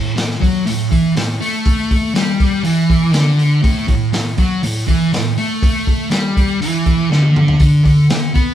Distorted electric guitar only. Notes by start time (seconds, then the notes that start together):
Already playing: A2
0.16 A2
0.41 F#3
0.66 A2
0.91 E3
1.17 A2
1.41 A3
2.15 G3
2.63 E3
3.13 D3
3.62 A2
3.88 A2
4.13 A2
4.38 F#3
4.64 A2
4.87 E3
5.13 A2
5.38 A3
6.11 G3
6.61 E3
7.11 D3
7.61 D3
7.85 D3
8.11 D3
8.34 B3